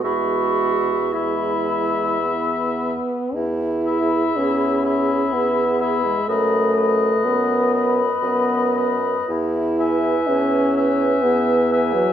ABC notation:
X:1
M:3/4
L:1/16
Q:1/4=61
K:E
V:1 name="Flute"
b4 b6 z2 | z2 b4 b4 b2 | b2 b4 b4 b2 | z2 g4 g4 g2 |]
V:2 name="Oboe"
e4 e6 z2 | z2 e4 e4 e2 | d2 d4 d4 d2 | z2 e4 e4 e2 |]
V:3 name="Clarinet"
F4 E6 z2 | z2 G4 G4 G2 | B2 B4 B4 B2 | z2 B4 B4 B2 |]
V:4 name="French horn"
G,4 G,4 B,4 | E4 C4 B,3 G, | A,4 B,4 B,3 z | E4 C4 B,3 F, |]
V:5 name="Bassoon" clef=bass
E,,8- E,,2 z2 | E,,4 E,,4 E,,4 | F,,4 F,,4 F,,4 | E,,4 E,,4 E,,4 |]